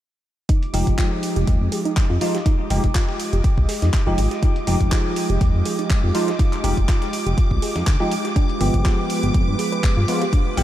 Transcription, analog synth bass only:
0.74 0.83 F1 loud
0.87 0.95 F1 medium
1.36 1.44 F1 medium
1.47 1.57 D#2 medium
1.61 1.69 F2 medium
2.10 2.18 F2 medium
2.70 2.80 F1 loud
2.84 2.92 F1 medium
3.33 3.41 F1 medium
3.58 3.66 C2 loud
3.82 3.90 F2 medium
4.07 4.15 F1 medium
4.18 4.27 G#1 medium
4.67 4.77 F1 loud
4.81 4.89 F1 medium
5.30 5.38 F1 medium
5.41 5.50 D#2 medium
5.54 5.62 F2 medium
6.04 6.11 F2 loud
6.64 6.73 F1 loud
6.77 6.85 F1 medium
7.26 7.34 F1 medium
7.51 7.59 C2 medium
7.76 7.84 F2 medium
7.87 7.96 D2 loud
8.61 8.70 G1 loud
8.74 8.82 G1 medium
9.23 9.31 G1 medium
9.34 9.44 F2 medium
9.48 9.56 G2 medium
9.97 10.05 G2 medium
10.57 10.63 G1 loud

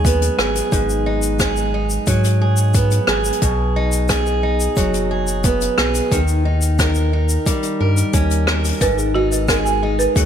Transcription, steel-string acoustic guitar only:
0.00 0.71 G#2 medium
0.00 2.07 F#3 medium
0.00 1.06 D#4 medium
0.00 0.38 G#4 medium
0.05 2.74 B3 medium
0.38 1.40 G#4 medium
0.72 3.42 G#2 medium
1.06 1.74 D#4 medium
1.40 2.41 G#4 medium
1.74 3.76 D#4 medium
2.07 4.12 F#3 medium
2.41 3.08 G#4 medium
2.75 5.45 B3 medium
3.09 4.09 G#4 medium
3.43 6.12 B2 medium
3.76 4.43 D#4 medium
4.09 5.10 G#4 medium
4.43 6.45 D#4 medium
4.77 6.19 F#3 medium
5.11 5.77 G#4 medium
5.45 6.19 B3 medium
5.78 6.19 G#4 medium
6.12 9.62 D#3 medium
6.45 7.13 D#4 medium
6.79 7.79 A#4 medium
7.13 9.15 D#4 medium
7.47 8.88 G3 medium
7.80 8.46 A#4 medium
8.14 8.88 C#4 medium
8.48 8.88 A#4 medium
8.81 10.26 G#2 medium
9.15 9.82 D#4 medium
9.49 10.26 G#4 medium
9.83 10.26 D#4 medium
10.17 10.26 F#3 medium

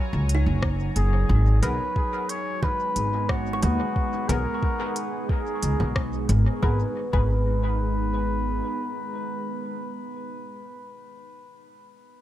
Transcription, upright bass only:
0.13 0.42 C#2 loud
0.46 0.93 F#1 medium
0.96 1.25 F#1 medium
1.29 1.59 G#1 loud
1.63 1.78 B1 loud
2.96 3.60 G#1 medium
3.63 3.78 D#2 loud
4.29 4.44 B1 loud
5.63 5.78 C#2 medium
5.80 6.26 B1 medium
6.29 6.44 G#1 loud
6.63 6.82 G#1 loud
7.13 8.59 G#1 medium

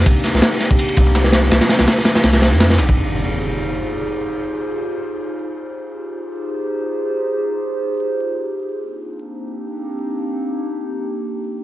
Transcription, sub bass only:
0.06 0.15 C2 loud
0.34 0.41 C2 medium
0.97 1.50 C2 medium
1.51 1.60 C2 loud
1.79 1.87 C2 medium
2.24 2.53 C2 loud
2.52 2.80 F2 medium
2.79 2.90 A#1 medium
2.89 2.96 G1 medium

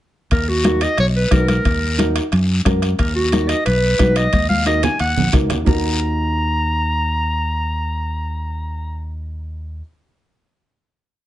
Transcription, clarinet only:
0.32 0.50 A#4 medium
0.49 0.84 F#4 medium
0.83 0.99 D#5 medium
1.00 1.07 C#5 loud
1.16 1.34 B4 medium
1.32 1.48 A#4 medium
1.49 2.12 A#4 medium
2.99 3.14 A#4 medium
3.15 3.50 F#4 medium
3.49 3.65 D#5 medium
3.65 4.18 B4 loud
4.17 4.49 D#5 medium
4.49 4.65 F5 medium
4.67 4.82 D#5 medium
4.84 4.99 G#5 medium
5.00 5.31 F#5 medium
5.67 9.11 A#5 medium

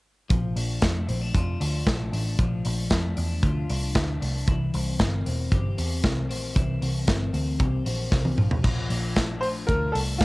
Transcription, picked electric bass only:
0.30 0.53 A#1 loud
0.56 0.78 A#1 loud
0.82 1.10 F2 medium
1.09 1.31 A#1 medium
1.35 1.57 F2 medium
1.61 1.83 D2 medium
1.87 2.09 A#1 medium
2.13 2.35 A1 medium
2.39 2.61 A#1 loud
2.66 2.88 A#1 medium
2.91 3.13 F2 medium
3.18 3.40 E2 medium
3.43 3.65 D2 medium
3.70 3.92 C2 medium
3.95 4.18 D2 medium
4.22 4.44 C2 medium
4.48 4.70 C2 loud
4.74 4.96 C2 loud
5.00 5.22 G1 medium
5.27 5.48 E1 medium
5.52 5.74 G1 medium
5.78 6.00 E2 medium
6.04 6.31 C2 medium
6.31 6.52 A#1 medium
6.56 6.78 C2 loud
6.82 7.04 C2 medium
7.08 7.30 G1 medium
7.34 7.56 D2 medium
7.60 7.82 C2 medium
7.86 8.08 A#1 medium
8.12 8.34 C2 medium
8.38 8.60 A#1 medium
8.64 8.86 A#1 loud
8.90 9.65 A#1 medium
9.69 9.91 D2 medium
9.95 10.25 C2 medium

